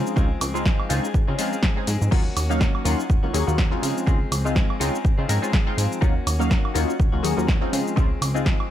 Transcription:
Already playing: F3 G#3 C4 C#4 D#4 F4 G#4
0.07 shaker
0.16 C#2 F3 G#3 C4 C#4 D#4 F4 G#4, kick, shaker
0.41 C#2, open hi-hat, high woodblock, shaker
0.54 G#3 C4 D#4 F4 G#4, shaker
0.65 F3 G#3 C4 G#4, kick, snare, shaker
0.80 high woodblock
0.89 C#2 F3 G#3 C4 C#4 D#4 F4 G#4, open hi-hat, shaker
1.03 G#3 C4 G#4, shaker
1.14 kick, shaker
1.27 C#3 G#3 C4 C#4 D#4 F4 G#4
1.38 F3 G#3 C4 C#4 D#4 F4 G#4, open hi-hat, shaker
1.52 G#3 C4 G#4, shaker
1.63 F3 G#3 C4 G#4, kick, snare, shaker
1.76 G#3 C4 C#4 D#4 G#4
1.87 G#2 F3 G#3 C4 G#4, open hi-hat, shaker
2.02 G#2, shaker
2.11 D#2 F#3 A#3 C#4 D#4 F4 F#4, kick, crash, shaker
2.36 D#2, open hi-hat, high woodblock, shaker
2.49 F#3 A#3 C#4 D#4 F#4 F5, shaker
2.60 A#3 C#4 F#4, kick, snare, shaker
2.75 high woodblock
2.84 D#2 F#3 A#3 C#4 D#4 F4 F#4, open hi-hat, shaker
2.98 C#4 F#4, shaker
3.10 D#1, kick, shaker
3.23 C#2 F#3 A#3 C#4 D#4 F4 F#4
3.33 D#2 F#3 A#3 C#4 D#4 F#4 G#4, open hi-hat, shaker
3.47 D#2 F#3 A#3 C#4 D#4 F4 F#4, shaker
3.58 A#3 C#4 F#4, kick, snare, shaker
3.71 G#3 C4 C#4 D#4 F4 F#4
3.82 C#3 F3 G#3 C4 G#4, open hi-hat, shaker
3.97 shaker
4.06 C#2 F3 G#3 C4 C#4 D#4 F4 G#4, kick, shaker
4.32 C#2, open hi-hat, high woodblock, shaker
4.44 G#3 C4 D#4 F4 G#4, shaker
4.55 F3 G#3 C4 G#4, kick, snare, shaker
4.70 high woodblock
4.79 C#2 F3 G#3 C4 C#4 D#4 F4 G#4, open hi-hat, shaker
4.93 G#3 C4 G#4, shaker
5.05 kick, shaker
5.18 C#3 G#3 C4 C#4 D#4 F4 G#4
5.28 G#2 F3 G#3 C4 C#4 D#4 G#4 A#4, open hi-hat, shaker
5.42 G#3 C4 C#4 D#4 F4 G#4, shaker
5.52 F3 G#3 C4 G#4, kick, snare, shaker
5.66 G#3 C4 D#4 F4 G#4
5.76 G#2 F3 G#3 C4 G#4, open hi-hat, shaker
5.92 shaker
6.01 D#2 F#3 A#3 C#4 D#4 F4 F#4, kick, shaker
6.27 D#2, open hi-hat, high woodblock, shaker
6.39 F#3 A#3 C#4 D#4 F#4 F5, shaker
6.50 A#3 C#4 F#4, kick, snare, shaker
6.65 high woodblock
6.74 D#2 F#3 A#3 C#4 D#4 F4 F#4, open hi-hat, shaker
6.88 C#4 F#4, shaker
7.00 D#1, kick, shaker
7.12 C#2 F#3 A#3 C#4 D#4 F4 F#4
7.23 D#2 F#3 A#3 C#4 D#4 F#4 G#4, open hi-hat, shaker
7.37 D#2 F#3 A#3 C#4 D#4 F4 F#4, shaker
7.47 A#3 C#4 F#4, kick, snare, shaker
7.61 G#3 C4 C#4 D#4 F4 F#4
7.71 C#3 F3 G#3 C4 G#4, open hi-hat, shaker
7.87 shaker
7.96 C#2 F3 G#3 C4 C#4 D#4 F4 G#4, kick, shaker
8.21 C#2, open hi-hat, high woodblock, shaker
8.34 G#3 C4 D#4 F4 G#4, shaker
8.45 F3 G#3 C4 G#4, kick, snare, shaker
8.60 high woodblock

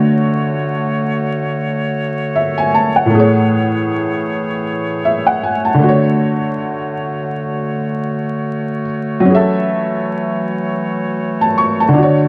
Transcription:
Already playing: D3 A3 F#4 C#5
2.36 E5
2.58 G#5
2.74 A5
2.96 F#5
3.06 A2
3.10 E3 A3 G#4
3.15 G#4
3.19 C#5
5.05 E5
5.27 F#5
5.44 G#5
5.65 A5
5.74 D3
5.79 D3 A3 F#4
5.84 F#4
5.89 C#5
9.20 F#3
9.25 E3 C#4 C#5
9.30 G#4
9.35 A4 E5
11.41 A5
11.58 C#6
11.80 A5
11.88 D3
11.93 D3 D4
11.98 F#4
12.03 C#5

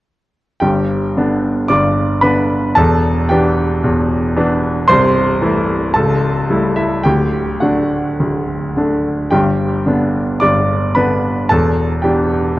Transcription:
0.60 G1 G2 G4 G5
1.17 D3 B3 D4
1.68 G1 G2 D5 D6
2.22 D3 B3 D4 B4 B5
2.75 E1 E2 A4 A5
3.29 E3 B3 D4 G4 G5
3.84 E1 E2
4.36 E3 B3 D4
4.88 C1 C2 C5 C6
5.42 E3 A3 E4
5.94 C#1 C#2 A4 A5
6.50 G3 A3 E4
6.76 E4 E5
7.04 D1 D2 G4 G5
7.60 D3 A3 D4 F#4 F#5
8.20 D1 D2
8.77 D3 A3 D4
9.31 G1 G2 G4 G5
9.86 D3 B3 D4
10.40 G1 G2 D5 D6
10.95 D3 B3 D4 B4 B5
11.49 E1 E2 A4 A5
12.02 E3 B3 D4 G4 G5

